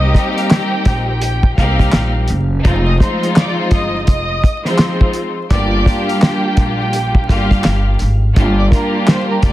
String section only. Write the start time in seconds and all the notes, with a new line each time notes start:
Already playing: G3 A#3 C4 D#4 G4
1.57 G3 A#3 C4 D#4 G4
2.62 F3 G#3 C4 D#4 F4
2.99 F3 G#3 C4 D#4 F4
4.64 F3 G#3 C4 D#4 F4
5.51 G3 A#3 D4 F4 G4
7.27 G3 A#3 D4 F4 G4
8.36 G3 A#3 D4 F4 G4
8.71 G3 A#3 D4 F4 G4